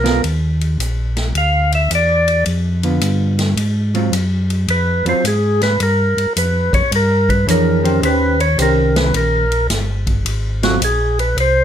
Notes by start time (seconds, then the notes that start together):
Already playing: B1 A#4
0.04 B3 F4 A#4, snare, ride
0.24 D#2, ride
0.61 ride
0.79 A#1, hi-hat pedal, ride
1.17 snare, ride
1.34 D2 F5, ride
1.72 E5, ride
1.90 E2, hi-hat pedal, ride
1.95 D5
2.28 ride
2.46 F2, ride
2.83 D3 B3 F4, ride
3.00 G2, hi-hat pedal, ride
3.39 snare, ride
3.56 G#2, ride
3.94 F#3 C4 F4, ride
4.12 F#2, hi-hat pedal, ride
4.50 ride
4.68 F2 B4, ride
5.04 F2 F#3 C4 F4, ride
5.09 C5
5.24 G#2 G#4, hi-hat pedal, ride
5.62 B4, snare, ride
5.80 G2 A#4, ride
6.17 G2, ride
6.36 F2 B4, hi-hat pedal, ride
6.73 F2 C#5, kick, ride
6.92 G2, ride
6.96 A#4
7.29 B4, kick, ride
7.47 F2 E3 D4 G#4 A#4 C#5, hi-hat pedal, ride
7.83 D#3 C#4 G4 C5, ride
8.02 D#2 D#3 C#4 G4 B4 C5, ride
8.40 C#5, ride
8.58 C2 D#3 C#4 G4 C5, hi-hat pedal, ride
8.62 A#4
8.96 B4, snare, ride
9.14 A#1 A#4, ride
9.52 ride
9.69 G1, snare, hi-hat pedal, ride
10.07 kick, ride
10.25 G#1, ride
10.63 F#3 C4 F4 F#4, snare, ride
10.81 A#1 G#4, hi-hat pedal, ride
11.19 B4, ride
11.37 C2 C5, ride